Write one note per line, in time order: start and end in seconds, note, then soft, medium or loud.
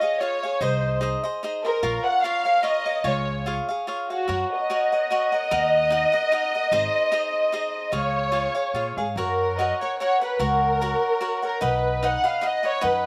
0.00 0.20 G#4 soft
0.00 0.21 C#5 soft
0.00 0.19 D#5 medium
0.00 0.20 F5 soft
0.20 0.43 F4 soft
0.20 0.43 G#4 soft
0.20 0.61 C#5 medium
0.20 0.43 C#5 medium
0.20 0.42 F5 medium
0.43 0.60 G#4 soft
0.43 0.61 C#5 soft
0.43 0.62 F5 soft
0.61 1.14 C2 medium
0.61 1.00 D#4 medium
0.61 1.00 G#4 medium
0.61 1.01 C5 medium
0.61 1.02 C5 medium
0.61 1.01 D#5 medium
1.01 1.23 D#4 medium
1.01 1.23 G#4 medium
1.01 1.24 C5 medium
1.01 1.22 D#5 medium
1.24 1.43 G#4 soft
1.24 1.43 C5 soft
1.24 1.42 D#5 medium
1.43 1.64 D#4 medium
1.43 1.65 G#4 medium
1.43 1.65 C5 medium
1.43 1.63 D#5 medium
1.64 1.83 G#4 soft
1.64 2.02 A#4 medium
1.64 1.83 C5 soft
1.64 1.83 D#5 soft
1.83 1.97 A#1 medium
1.83 2.24 F4 medium
1.83 2.23 A#4 medium
1.83 2.25 C#5 medium
1.83 2.25 F5 medium
2.04 2.23 F#5 medium
2.22 2.46 F4 medium
2.22 2.45 A#4 medium
2.22 2.44 C#5 medium
2.22 2.63 F5 medium
2.22 2.44 F5 medium
2.45 2.62 A#4 soft
2.45 2.63 C#5 soft
2.45 2.63 F5 soft
2.63 2.85 F4 medium
2.63 2.85 A#4 medium
2.63 2.85 C#5 medium
2.63 3.04 D#5 medium
2.63 2.84 F5 medium
2.85 3.04 A#4 soft
2.85 3.03 C#5 soft
2.85 3.04 F5 soft
3.04 3.58 C#2 medium
3.04 3.45 F4 medium
3.04 3.45 G#4 medium
3.04 3.47 C#5 medium
3.04 3.46 F5 medium
3.46 3.68 F4 medium
3.46 3.68 G#4 medium
3.46 3.69 C#5 medium
3.46 3.67 F5 medium
3.69 3.86 G#4 soft
3.69 3.87 C#5 soft
3.69 3.87 F5 soft
3.87 4.10 F4 medium
3.87 4.10 G#4 medium
3.87 4.10 C#5 medium
3.87 4.09 F5 medium
4.09 4.48 F#4 medium
4.09 4.28 G#4 soft
4.09 4.27 C#5 soft
4.09 4.29 F5 soft
4.28 4.43 F#2 medium
4.28 4.69 F#4 medium
4.28 4.70 A#4 medium
4.28 4.69 C#5 medium
4.28 4.71 F#5 medium
4.52 7.93 D#5 medium
4.70 4.92 F#4 medium
4.70 4.92 A#4 medium
4.70 4.92 C#5 medium
4.70 4.91 F#5 medium
4.92 5.10 A#4 soft
4.92 5.11 C#5 soft
4.92 5.11 F#5 soft
5.10 5.33 F#4 medium
5.10 5.33 A#4 medium
5.10 5.33 C#5 medium
5.10 5.31 F#5 medium
5.32 5.50 A#4 soft
5.32 5.51 C#5 soft
5.32 5.51 F#5 soft
5.51 6.04 D#2 medium
5.51 5.90 D#4 medium
5.51 5.90 A#4 medium
5.51 5.92 D#5 medium
5.51 5.91 F#5 medium
5.90 6.12 D#4 medium
5.90 6.13 A#4 medium
5.90 6.12 D#5 medium
5.90 6.11 F#5 medium
6.12 6.31 A#4 soft
6.12 6.31 D#5 medium
6.12 6.31 F#5 medium
6.32 6.53 D#4 medium
6.32 6.54 A#4 medium
6.32 6.54 D#5 medium
6.32 6.53 F#5 medium
6.55 6.72 A#4 soft
6.55 6.72 D#5 soft
6.55 6.72 F#5 soft
6.72 6.86 G#1 medium
6.72 7.10 D#4 medium
6.72 7.11 G#4 medium
6.72 7.11 C5 medium
6.72 7.12 D#5 medium
7.12 7.51 D#4 medium
7.12 7.52 G#4 medium
7.12 7.52 C5 medium
7.12 7.52 D#5 medium
7.52 7.91 D#4 medium
7.52 7.92 G#4 medium
7.52 7.92 C5 medium
7.52 7.93 D#5 medium
7.92 8.46 C#2 medium
7.92 8.31 F4 medium
7.92 8.30 G#4 medium
7.92 8.32 C#5 medium
7.92 8.98 C#5 medium
7.92 8.32 F5 medium
8.32 8.55 F4 soft
8.32 8.55 G#4 medium
8.32 8.54 C#5 medium
8.32 8.53 F5 medium
8.55 8.73 G#4 soft
8.55 8.75 C#5 soft
8.55 8.74 F5 soft
8.74 8.94 A#2 medium
8.74 8.97 F4 medium
8.74 8.97 G#4 soft
8.74 8.97 C#5 soft
8.74 8.96 F5 medium
8.97 9.14 G#2 medium
8.97 9.06 G#4 medium
8.97 9.17 G#4 soft
8.97 9.17 C#5 soft
8.97 9.17 F5 soft
9.16 9.70 F#2 medium
9.16 9.58 F#4 medium
9.16 9.58 A#4 medium
9.16 9.56 A#4 medium
9.16 9.59 C#5 medium
9.16 9.61 F#5 medium
9.58 9.81 F#4 medium
9.58 9.81 A#4 medium
9.58 9.81 C#5 medium
9.58 9.80 D#5 medium
9.58 9.80 F#5 medium
9.81 10.00 A#4 soft
9.81 9.97 C#5 medium
9.81 10.00 C#5 soft
9.81 10.00 F#5 soft
9.98 10.22 F#4 medium
9.98 10.22 A#4 medium
9.98 10.19 C#5 medium
9.98 10.21 C#5 medium
9.98 10.20 F#5 medium
10.21 10.38 A#4 soft
10.21 10.41 B4 medium
10.21 10.39 C#5 soft
10.21 10.39 F#5 soft
10.39 10.92 C#2 medium
10.39 10.81 F#4 medium
10.39 10.80 A#4 medium
10.39 11.43 A#4 medium
10.39 10.80 C#5 medium
10.39 10.82 F#5 medium
10.81 11.20 F#4 medium
10.81 11.19 A#4 medium
10.81 11.20 C#5 medium
10.81 11.21 F#5 medium
11.21 11.43 F#4 medium
11.21 11.43 A#4 medium
11.21 11.42 C#5 medium
11.21 11.41 F#5 medium
11.42 11.61 A#4 medium
11.42 11.61 A#4 soft
11.42 11.62 C#5 soft
11.42 11.61 F#5 soft
11.61 12.14 B1 medium
11.61 12.02 D#4 medium
11.61 12.03 B4 medium
11.61 12.02 D#5 medium
11.61 12.02 F#5 medium
11.65 12.04 B4 medium
12.03 12.24 D#4 medium
12.03 12.24 B4 medium
12.03 12.23 D#5 medium
12.03 12.22 F#5 medium
12.03 12.25 F#5 medium
12.24 12.40 B4 soft
12.24 12.41 D#5 soft
12.24 12.44 F5 medium
12.24 12.42 F#5 medium
12.41 12.64 D#4 medium
12.41 12.64 B4 medium
12.41 12.63 D#5 medium
12.41 12.62 F#5 medium
12.46 12.66 D#5 medium
12.63 12.80 B4 soft
12.63 12.80 D#5 soft
12.63 12.81 F#5 soft
12.67 12.85 C#5 medium
12.81 13.06 F#2 medium
12.81 13.06 D#4 medium
12.81 13.06 B4 medium
12.81 13.06 D#5 medium
12.81 13.06 F#5 medium
12.86 13.06 B4 medium